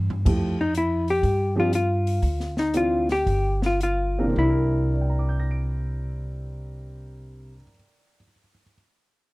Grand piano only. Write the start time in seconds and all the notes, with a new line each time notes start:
0.25 F3 A3 E4 G4
1.56 F3 C4 D4 G4
2.74 E3 C4 D4 F4
4.18 E3 C4 D4 A#4
4.24 C3
4.30 C4
4.37 D4
4.43 E4
4.49 A#4
4.94 D5
5.01 G5
5.10 A#5
5.19 D6
5.29 G6
5.40 A#6
5.51 D7